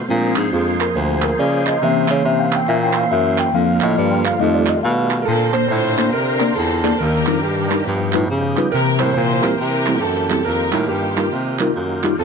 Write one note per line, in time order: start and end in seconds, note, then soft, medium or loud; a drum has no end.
0.08 0.33 A#2 loud
0.08 1.80 F3 medium
0.08 0.76 G#3 medium
0.08 4.37 A#3 medium
0.08 0.76 C4 soft
0.08 0.77 D4 medium
0.08 1.80 G#4 medium
0.08 3.51 C5 medium
0.36 0.50 G#2 medium
0.36 clap medium
0.52 0.89 F2 medium
0.52 0.65 G#4 medium
0.81 0.96 A#4 medium
0.81 clap medium
0.95 1.32 D2 loud
0.95 1.24 C5 medium
1.22 1.39 A#4 medium
1.22 clap medium
1.39 1.75 C#3 loud
1.39 1.67 D5 medium
1.67 1.83 D#5 medium
1.67 clap medium
1.82 2.05 C3 loud
1.82 3.51 E3 medium
1.82 3.51 A#3 medium
1.82 3.53 C#4 medium
1.82 3.52 C#4 medium
1.82 3.53 E4 medium
1.82 2.11 E5 loud
2.08 2.23 C#3 medium
2.08 2.25 C#5 loud
2.08 clap medium
2.25 2.61 C3 medium
2.25 2.38 E5 loud
2.39 2.56 F5 medium
2.39 2.42 G5 medium
2.52 2.58 F#5 medium
2.52 2.69 G5 loud
2.52 clap medium
2.68 3.05 A#2 loud
2.68 2.75 E5 loud
2.83 2.98 G5 loud
2.93 3.12 F5 loud
2.93 clap medium
3.11 3.48 F#2 loud
3.11 3.37 E5 loud
3.38 3.55 G5 loud
3.38 clap medium
3.54 3.78 F2 medium
3.54 4.40 D3 medium
3.54 4.21 F3 medium
3.54 4.40 F3 medium
3.54 4.22 A#3 soft
3.54 4.22 D4 medium
3.54 4.40 F4 medium
3.54 3.84 F5 loud
3.81 3.95 A2 loud
3.81 3.98 D#5 medium
3.81 clap medium
3.98 4.34 G2 medium
3.98 4.13 D5 medium
4.11 4.18 G5 medium
4.25 4.36 F5 medium
4.25 clap medium
4.37 4.72 G3 medium
4.37 5.26 G3 medium
4.37 4.72 A3 medium
4.37 5.26 A3 medium
4.37 4.73 D#4 medium
4.37 4.55 D#5 medium
4.37 4.40 F5 medium
4.41 4.78 F2 loud
4.41 5.27 D#3 medium
4.41 5.27 F4 medium
4.55 4.70 D5 medium
4.66 4.76 D#5 medium
4.66 clap medium
4.83 5.21 B2 loud
4.83 5.24 F5 medium
5.11 clap medium
5.22 5.55 A4 medium
5.22 5.27 A#4 medium
5.27 5.51 A#2 loud
5.27 5.94 A#2 medium
5.27 6.99 D3 medium
5.27 6.99 C4 medium
5.27 6.11 C4 medium
5.27 6.10 D4 medium
5.27 5.53 A4 medium
5.27 7.84 A#4 soft
5.27 6.99 C5 medium
5.53 5.64 A#3 medium
5.53 5.64 D4 medium
5.53 5.64 A4 medium
5.53 5.67 C5 loud
5.53 5.64 C5 medium
5.53 5.70 C5 medium
5.53 clap medium
5.68 6.15 A2 medium
5.68 6.14 F4 medium
5.68 6.10 C5 medium
5.68 6.11 C5 loud
5.98 6.08 A#3 medium
5.98 6.08 D4 medium
5.98 6.08 A4 medium
5.98 6.08 C5 medium
5.98 clap medium
6.12 6.50 C3 medium
6.12 6.97 D4 medium
6.12 6.97 F4 medium
6.12 6.58 A#4 medium
6.12 6.54 A#4 medium
6.40 6.51 A#3 medium
6.40 6.50 D4 medium
6.40 6.51 A4 medium
6.40 6.51 D5 medium
6.40 clap medium
6.55 6.94 E2 medium
6.55 6.82 A4 medium
6.55 6.85 A4 medium
6.84 6.94 A#3 medium
6.84 6.94 D4 medium
6.84 6.99 A4 medium
6.84 6.94 A4 medium
6.84 7.00 A4 medium
6.84 6.94 D5 medium
6.84 clap medium
6.99 7.29 D#2 medium
6.99 7.67 D#3 medium
6.99 7.86 D#3 medium
6.99 7.86 D4 medium
6.99 7.44 D4 medium
6.99 10.43 G4 medium
6.99 7.44 G4 medium
6.99 7.40 A#4 medium
6.99 7.44 A#4 medium
7.27 7.45 F2 medium
7.27 7.37 G3 medium
7.27 7.37 D4 medium
7.27 7.38 D#4 medium
7.27 7.37 A#4 medium
7.27 clap medium
7.43 7.80 G2 medium
7.43 8.11 A#3 medium
7.43 8.11 D4 medium
7.43 8.10 G4 medium
7.43 8.15 G4 medium
7.71 7.80 G3 medium
7.71 7.81 D4 medium
7.71 7.81 D#4 medium
7.71 7.81 A#4 medium
7.71 clap medium
7.85 8.10 G2 medium
7.85 8.54 G2 medium
7.85 8.72 F3 medium
7.85 8.72 B3 medium
7.85 8.72 D#4 medium
8.13 8.28 A2 medium
8.13 8.24 G3 medium
8.13 8.24 D#4 medium
8.13 8.24 F4 medium
8.13 8.24 B4 loud
8.13 clap medium
8.30 8.67 C#3 medium
8.57 8.67 G3 medium
8.57 8.67 D#4 medium
8.57 8.67 F4 medium
8.57 8.68 B4 medium
8.57 clap medium
8.72 8.97 C3 medium
8.72 9.40 C3 medium
8.72 10.44 E3 medium
8.72 10.44 A#3 medium
8.72 10.44 C4 medium
8.72 9.16 E4 medium
8.72 9.16 G4 medium
8.72 8.78 A#4 loud
8.72 9.00 A#4 loud
9.00 9.14 A2 medium
9.00 9.10 G3 medium
9.00 9.10 C4 medium
9.00 9.10 E4 medium
9.00 9.11 A#4 medium
9.00 9.13 C5 medium
9.00 9.17 C5 medium
9.00 clap medium
9.14 9.53 A#2 medium
9.14 9.59 E4 medium
9.14 9.59 G4 medium
9.14 9.19 C5 loud
9.14 9.57 C5 loud
9.33 9.43 C5 medium
9.42 9.53 G3 medium
9.42 9.53 C4 medium
9.42 9.53 E4 medium
9.42 9.53 G4 medium
9.42 9.98 A#4 medium
9.42 clap medium
9.60 10.05 C3 medium
9.60 10.42 E4 medium
9.60 10.42 G4 medium
9.60 10.00 A#4 loud
9.86 9.97 G3 medium
9.86 9.97 C4 medium
9.86 9.97 E4 medium
9.86 9.97 A4 medium
9.86 clap medium
10.01 10.40 F#2 medium
10.01 10.28 A4 medium
10.01 10.29 A4 medium
10.30 10.40 G3 medium
10.30 10.40 C4 medium
10.30 10.40 E4 medium
10.30 10.40 G4 medium
10.30 10.46 A4 medium
10.30 10.45 A4 medium
10.30 clap medium
10.45 10.70 F2 medium
10.45 12.24 D#3 medium
10.45 12.17 A#3 medium
10.45 10.89 D#4 medium
10.45 12.24 F4 medium
10.45 12.17 G4 medium
10.45 10.88 G4 medium
10.45 10.85 A#4 medium
10.45 10.86 A#4 medium
10.72 10.87 A2 medium
10.72 10.83 G3 medium
10.72 10.83 D#4 medium
10.72 10.83 F4 medium
10.72 10.83 A#4 medium
10.72 clap medium
10.88 11.26 G2 medium
10.88 11.72 A#3 medium
10.88 11.72 D#4 medium
10.88 11.56 G4 medium
11.17 11.27 G3 medium
11.17 11.27 D#4 medium
11.17 11.27 F4 medium
11.17 11.27 A#4 medium
11.17 clap medium
11.33 11.69 C3 medium
11.59 11.70 G3 medium
11.59 11.70 D#4 medium
11.59 11.70 F4 medium
11.59 11.70 A#4 medium
11.59 clap medium
11.76 12.13 F#2 medium
12.04 12.13 G3 medium
12.04 12.13 D#4 medium
12.04 12.13 F4 medium
12.04 12.13 G4 medium
12.04 clap medium
12.18 12.24 F2 medium
12.18 12.24 C4 medium
12.18 12.24 D#4 medium
12.18 12.24 A4 medium